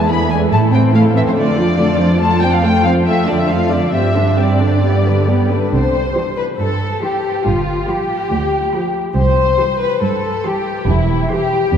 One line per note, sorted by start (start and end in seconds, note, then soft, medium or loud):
0.00 0.50 E2 soft
0.09 0.30 D3 soft
0.09 0.30 B3 soft
0.09 0.30 E4 soft
0.09 0.30 G#4 soft
0.09 0.30 B5 soft
0.30 0.52 E3 soft
0.30 0.52 G#3 soft
0.30 0.52 D4 soft
0.30 0.52 B4 soft
0.30 0.39 G#5 soft
0.51 1.36 A2 soft
0.51 0.71 A3 soft
0.51 0.71 E4 soft
0.51 0.71 A4 soft
0.51 0.60 A5 soft
0.72 0.94 E3 soft
0.72 0.94 C4 soft
0.72 0.94 C5 soft
0.72 0.81 G5 soft
0.93 1.15 A3 soft
0.93 1.15 E4 soft
0.93 1.15 A4 soft
0.93 1.03 F5 soft
1.14 1.36 E3 soft
1.14 1.36 C4 soft
1.14 1.36 C5 soft
1.14 1.20 E5 soft
1.27 1.31 C5 soft
1.36 3.90 F2 soft
1.36 1.55 D3 soft
1.36 1.55 A3 soft
1.36 1.56 F4 soft
1.36 1.56 A4 soft
1.36 2.19 D5 medium
1.57 1.78 F3 soft
1.57 1.78 D4 soft
1.57 1.77 F4 soft
1.78 2.00 D3 soft
1.78 2.00 A3 soft
1.78 1.99 F4 soft
1.78 1.99 A4 soft
1.99 2.21 F3 soft
1.99 2.21 D4 soft
1.99 2.20 F4 soft
2.21 2.40 A3 soft
2.21 2.40 F4 soft
2.21 2.40 A4 soft
2.21 2.41 A5 medium
2.41 2.63 F3 soft
2.41 2.63 C4 soft
2.41 2.63 C5 soft
2.41 2.52 G5 soft
2.54 2.64 F5 soft
2.63 2.84 A3 soft
2.63 2.84 F4 soft
2.63 2.84 A4 soft
2.63 2.85 G5 medium
2.84 3.04 F3 soft
2.84 3.06 C4 soft
2.84 3.06 C5 soft
2.84 2.92 F5 soft
3.06 3.26 F3 soft
3.06 3.26 A3 soft
3.06 3.26 F4 soft
3.06 3.26 A4 soft
3.06 3.27 E5 soft
3.27 3.49 D3 soft
3.27 3.49 F3 soft
3.27 3.49 D4 soft
3.27 3.48 F4 soft
3.27 3.38 D5 soft
3.38 3.49 E5 soft
3.49 3.71 F3 soft
3.49 3.71 A3 soft
3.49 3.70 F4 soft
3.49 3.71 A4 soft
3.49 3.71 F5 soft
3.71 3.94 D3 soft
3.71 3.94 F3 soft
3.71 3.93 D4 soft
3.71 3.94 F4 soft
3.71 3.94 D5 soft
3.93 5.50 G2 soft
3.93 4.15 G3 soft
3.93 4.14 C4 soft
3.93 4.15 C4 soft
3.93 4.14 G4 soft
3.93 4.37 E5 soft
4.16 4.39 D3 soft
4.16 4.39 D4 soft
4.16 4.39 C5 soft
4.38 4.61 G3 soft
4.38 4.61 C4 soft
4.38 4.61 G4 soft
4.38 5.51 D5 soft
4.61 4.84 D3 soft
4.61 4.84 D4 soft
4.61 4.84 C5 soft
4.84 5.05 G3 soft
4.84 5.05 B3 soft
4.84 5.05 G4 soft
5.06 5.28 D3 soft
5.06 5.27 G3 soft
5.06 5.29 D4 soft
5.06 5.29 B4 soft
5.28 5.49 G3 soft
5.28 5.51 B3 soft
5.28 5.51 G4 soft
5.50 5.73 D3 soft
5.50 5.73 G3 soft
5.50 5.73 D4 soft
5.50 5.73 B4 soft
5.73 6.07 C2 soft
5.73 6.07 C3 soft
5.73 6.34 C5 soft
6.16 6.48 E3 soft
6.16 6.48 G4 soft
6.16 6.48 C6 soft
6.37 6.45 B4 soft
6.59 6.93 G2 soft
6.59 7.02 A4 soft
7.02 7.34 E3 soft
7.02 7.44 G4 soft
7.02 7.34 G4 soft
7.02 7.35 C6 soft
7.45 7.80 G1 soft
7.45 7.79 G2 soft
7.45 7.89 F4 soft
7.88 8.21 F3 soft
7.88 8.95 G4 soft
7.88 8.21 G4 soft
7.88 8.21 B5 soft
8.31 8.65 D2 soft
8.74 9.06 F3 soft
8.74 9.06 G4 soft
8.74 9.05 B5 soft
9.16 9.50 C2 soft
9.16 9.51 C2 soft
9.16 9.77 C5 soft
9.59 9.91 E3 soft
9.59 9.91 G4 soft
9.59 9.91 C6 soft
9.81 10.03 B4 soft
10.02 10.36 G2 soft
10.02 10.45 A4 soft
10.44 10.77 E3 soft
10.44 10.77 G4 soft
10.44 10.88 G4 soft
10.44 10.77 C6 soft
10.88 11.21 E1 soft
10.88 11.21 E2 soft
10.88 11.30 E4 soft
11.30 11.62 E3 soft
11.30 11.62 G4 soft
11.30 11.78 G4 medium
11.30 11.62 C6 soft
11.73 11.78 E2 soft